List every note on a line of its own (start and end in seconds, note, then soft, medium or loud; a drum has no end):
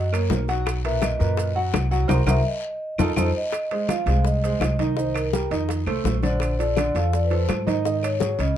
0.00 0.27 F#2 loud
0.00 0.10 D#5 medium
0.12 0.42 A#3 medium
0.12 0.42 A#4 medium
0.12 0.42 C#5 medium
0.12 high conga soft
0.12 high timbale medium
0.12 claves medium
0.12 maracas medium
0.30 1.14 B1 medium
0.30 high bongo medium
0.30 low bongo medium
0.30 high conga medium
0.30 low timbale medium
0.30 short guiro medium
0.30 maracas medium
0.48 0.78 F#3 medium
0.48 0.78 F#4 medium
0.48 0.78 F#5 medium
0.48 high bongo soft
0.48 high conga soft
0.48 high timbale medium
0.48 short guiro medium
0.48 maracas soft
0.66 high bongo medium
0.66 high conga soft
0.66 high timbale medium
0.66 long guiro medium
0.66 claves medium
0.66 maracas medium
0.85 1.14 A#2 medium
0.85 1.14 A#4 medium
0.85 1.14 B4 medium
0.85 1.02 E5 loud
0.85 high conga soft
0.85 high timbale medium
1.02 1.53 D#5 medium
1.02 high bongo medium
1.02 high conga medium
1.02 high timbale medium
1.02 low timbale medium
1.02 short guiro medium
1.02 claves medium
1.02 maracas medium
1.19 1.70 F#2 loud
1.19 1.49 A#2 medium
1.19 1.49 A#4 medium
1.19 1.50 B4 medium
1.19 short guiro medium
1.19 maracas soft
1.37 high bongo medium
1.37 high conga soft
1.37 high timbale medium
1.37 long guiro medium
1.37 maracas medium
1.55 1.85 F#3 medium
1.55 1.85 F#4 medium
1.55 1.86 F#5 medium
1.55 high conga soft
1.73 2.07 C2 loud
1.73 high bongo medium
1.73 low bongo medium
1.73 high conga medium
1.73 high timbale medium
1.73 low timbale medium
1.73 short guiro medium
1.73 claves medium
1.73 maracas medium
1.91 2.06 F#3 loud
1.91 2.06 F#4 medium
1.91 2.07 F#5 medium
1.91 short guiro medium
1.91 maracas soft
2.08 2.23 C2 loud
2.08 2.20 F#4 medium
2.08 2.20 A#4 medium
2.08 2.20 C5 loud
2.08 low bongo loud
2.08 high conga loud
2.08 high timbale loud
2.08 long guiro medium
2.08 claves medium
2.08 maracas medium
2.26 2.40 C2 loud
2.26 2.39 F#4 loud
2.26 2.39 A#4 loud
2.26 2.39 C5 medium
2.26 2.45 E5 loud
2.26 low bongo loud
2.26 high conga loud
2.26 high timbale loud
2.26 long guiro loud
2.26 claves loud
2.26 maracas medium
2.47 2.96 D#5 medium
2.98 3.13 F2 loud
2.98 3.11 D#4 loud
2.98 3.11 F4 loud
2.98 3.11 A4 loud
2.98 low bongo loud
2.98 high conga loud
2.98 high timbale medium
2.98 long guiro loud
2.98 claves medium
2.98 maracas medium
3.16 3.30 F2 loud
3.16 3.29 D#4 medium
3.16 3.29 F4 medium
3.16 3.29 A4 medium
3.16 3.37 C5 loud
3.16 low bongo loud
3.16 high conga loud
3.16 high timbale loud
3.16 long guiro loud
3.16 claves loud
3.16 maracas loud
3.37 3.70 D#5 medium
3.52 high bongo medium
3.52 high conga soft
3.52 high timbale medium
3.52 long guiro medium
3.52 claves medium
3.52 maracas medium
3.71 3.87 G#3 medium
3.71 3.86 G#4 medium
3.71 3.87 C5 medium
3.71 3.81 D#5 medium
3.71 high conga soft
3.71 high timbale medium
3.89 4.04 F3 medium
3.89 4.04 F4 medium
3.89 4.23 F5 loud
3.89 4.05 F5 medium
3.89 high bongo medium
3.89 high conga medium
3.89 high timbale medium
3.89 short guiro medium
3.89 claves medium
3.89 maracas medium
4.06 4.57 C2 loud
4.06 4.37 G#3 medium
4.06 4.37 G#4 medium
4.06 4.37 C5 medium
4.06 high conga soft
4.06 high timbale medium
4.06 short guiro medium
4.06 maracas soft
4.25 4.76 D#5 loud
4.25 high bongo medium
4.25 high conga soft
4.25 long guiro medium
4.25 maracas medium
4.43 4.73 G#3 medium
4.43 4.73 G#4 medium
4.43 4.73 C5 medium
4.43 high conga soft
4.43 high timbale medium
4.43 maracas medium
4.60 5.45 C2 medium
4.60 high bongo medium
4.60 low bongo medium
4.60 high conga medium
4.60 high timbale medium
4.60 low timbale medium
4.60 short guiro medium
4.60 claves medium
4.60 maracas medium
4.79 4.94 D#3 medium
4.79 4.94 D#4 medium
4.79 4.94 D#5 medium
4.79 high conga medium
4.79 high timbale medium
4.79 short guiro medium
4.79 maracas soft
4.96 5.26 D#3 medium
4.96 5.26 D#4 medium
4.96 5.14 C5 medium
4.96 5.26 D#5 medium
4.96 high bongo medium
4.96 high conga soft
4.96 long guiro medium
4.96 maracas medium
5.14 5.48 A#4 medium
5.14 high bongo soft
5.14 high conga soft
5.14 high timbale medium
5.14 claves medium
5.14 maracas medium
5.33 5.48 G3 medium
5.33 5.48 G4 medium
5.33 5.48 A#4 medium
5.33 high bongo medium
5.33 high conga medium
5.33 short guiro medium
5.33 maracas medium
5.51 5.84 F2 medium
5.51 5.81 D#3 medium
5.51 5.81 D#4 medium
5.51 5.81 D#5 medium
5.51 high conga soft
5.51 high timbale medium
5.51 short guiro medium
5.51 maracas soft
5.69 high bongo medium
5.69 high conga soft
5.69 high timbale medium
5.69 long guiro medium
5.69 maracas medium
5.86 6.03 C2 medium
5.86 6.16 A3 medium
5.86 6.17 A4 medium
5.86 6.17 C5 medium
5.86 high bongo soft
5.86 high conga soft
5.86 high timbale medium
5.86 claves medium
6.04 6.89 A#1 medium
6.04 high bongo medium
6.04 low bongo medium
6.04 high conga medium
6.04 low timbale medium
6.04 short guiro medium
6.04 maracas medium
6.23 6.53 D3 medium
6.23 6.53 D4 medium
6.23 6.56 C5 medium
6.23 6.53 D5 medium
6.23 high bongo soft
6.23 high conga medium
6.23 high timbale medium
6.23 short guiro medium
6.23 maracas soft
6.40 high bongo medium
6.40 high timbale medium
6.40 long guiro medium
6.40 claves medium
6.40 maracas medium
6.59 6.74 F3 medium
6.59 6.74 F4 medium
6.59 6.75 A4 medium
6.59 6.96 D5 loud
6.59 high conga soft
6.59 high timbale medium
6.59 maracas medium
6.76 6.92 D3 medium
6.76 6.92 D4 medium
6.76 6.92 D5 medium
6.76 high bongo medium
6.76 high conga medium
6.76 high timbale medium
6.76 short guiro medium
6.76 claves medium
6.76 maracas medium
6.95 7.45 F2 medium
6.95 7.24 F3 medium
6.95 7.25 F4 medium
6.95 7.25 A4 medium
6.95 7.14 F5 loud
6.95 high conga soft
6.95 high timbale medium
6.95 short guiro medium
6.95 maracas soft
7.13 7.19 D5 loud
7.13 high bongo medium
7.13 high conga soft
7.13 long guiro medium
7.13 maracas medium
7.25 7.31 B4 medium
7.30 7.60 F3 medium
7.30 7.60 F4 medium
7.30 7.61 A4 medium
7.30 7.59 C5 medium
7.30 high conga soft
7.30 high timbale medium
7.49 8.33 G#2 medium
7.49 high bongo medium
7.49 low bongo medium
7.49 high conga medium
7.49 high timbale medium
7.49 low timbale medium
7.49 short guiro medium
7.49 claves medium
7.49 maracas medium
7.60 7.67 C5 medium
7.67 7.82 D#3 medium
7.67 7.82 D#4 medium
7.67 8.04 D#5 medium
7.67 7.82 D#5 medium
7.67 high conga medium
7.67 high timbale medium
7.67 short guiro medium
7.67 maracas soft
7.85 8.15 D#3 medium
7.85 8.15 D#4 medium
7.85 8.15 D#5 medium
7.85 high bongo medium
7.85 high conga soft
7.85 long guiro medium
7.85 maracas medium
8.03 8.40 C#5 medium
8.03 high bongo soft
8.03 high conga soft
8.03 high timbale medium
8.03 claves medium
8.03 maracas soft
8.20 8.36 F#3 medium
8.20 8.36 F#4 medium
8.20 8.36 G#4 medium
8.20 high bongo medium
8.20 high conga medium
8.20 short guiro medium
8.20 maracas medium
8.38 8.57 C#2 medium
8.38 8.57 C#3 medium
8.38 8.57 C#4 medium
8.38 8.57 C#5 medium
8.38 8.57 D#5 medium
8.38 high conga soft
8.38 high timbale medium
8.38 short guiro medium
8.38 maracas soft